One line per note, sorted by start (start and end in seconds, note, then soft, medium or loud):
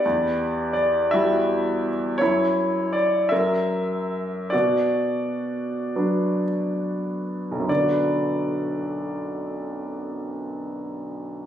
0.00 0.73 G4 soft
0.00 0.72 D5 medium
0.05 2.17 E2 soft
0.73 1.08 D5 medium
1.11 2.17 G3 soft
1.11 2.18 E4 soft
1.11 2.18 F#4 soft
1.11 1.89 E5 medium
2.18 3.29 F#2 soft
2.18 3.28 E4 soft
2.18 2.95 C#5 medium
2.93 3.32 D5 medium
3.29 4.50 F#2 soft
3.29 4.49 A#4 soft
3.29 4.55 E5 medium
4.50 6.43 F#4 soft
4.50 6.42 D5 medium
4.54 7.66 B2 soft
5.96 7.66 F#3 soft
5.96 7.66 B3 soft
5.96 7.67 D4 soft
7.52 11.46 B1 soft
7.60 11.46 F#2 soft
7.68 11.46 D3 soft
7.68 11.46 D5 soft
7.76 11.46 B3 soft
7.84 11.46 F#4 soft
7.92 11.46 B4 soft